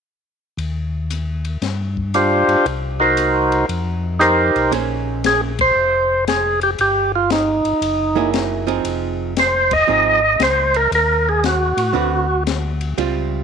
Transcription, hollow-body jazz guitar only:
4.71 5.51 A#3 soft
4.71 5.51 C#4 medium
4.71 5.52 G#4 medium
4.71 5.52 C5 soft
8.15 8.64 F#3 medium
8.15 8.64 A#3 medium
8.15 8.64 E4 medium
8.15 8.65 G#4 medium
8.67 9.33 F3 medium
8.67 9.33 C4 medium
8.67 9.33 D#4 medium
8.67 9.33 G#4 medium
9.88 10.19 F3 soft
9.88 10.19 C4 medium
9.88 10.19 D#4 soft
9.88 10.19 G#4 medium
11.93 12.25 D3 medium
11.93 12.25 C4 medium
11.93 12.26 F#4 medium
11.93 12.26 B4 medium
12.98 13.44 G3 medium
12.98 13.44 C4 medium
12.98 13.44 F4 medium

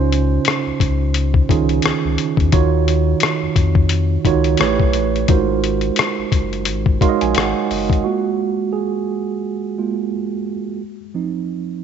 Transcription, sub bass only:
0.00 0.39 C#2 loud
0.67 0.72 C#2 soft
0.81 1.42 C#2 loud
1.50 1.80 C2 medium
1.85 1.93 C#2 soft
2.05 2.17 C#2 medium
2.38 2.51 E2 medium
2.53 3.14 D#2 loud
3.43 3.48 F2 medium
3.56 4.18 F2 medium
4.25 4.56 C#2 medium
4.61 4.78 A1 loud
4.80 4.97 B1 medium
4.95 5.26 A1 loud
5.29 5.91 G#1 loud
6.18 6.24 F#1 soft
6.32 6.69 F#1 medium
6.67 6.98 G#1 medium
7.01 7.09 A#1 soft
7.22 7.34 A#1 medium
7.36 7.54 G#1 medium
7.71 7.88 F#1 medium
7.90 8.03 G#1 medium

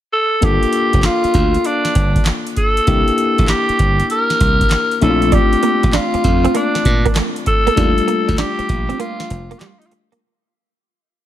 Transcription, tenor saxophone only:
0.13 0.45 A4 loud
0.44 1.04 G4 loud
1.05 1.68 F4 medium
1.66 2.27 D4 medium
2.57 3.45 A4 loud
3.49 4.06 G4 loud
4.11 4.98 A#4 loud
5.03 5.35 A4 medium
5.33 5.94 G4 loud
5.95 6.58 F4 medium
6.56 7.17 D4 medium
7.47 8.35 A4 loud
8.39 8.96 G4 medium
9.00 9.60 F4 medium
9.58 9.68 G4 medium
9.67 9.80 F4 medium
9.79 9.88 D#4 medium
9.86 9.92 F4 medium

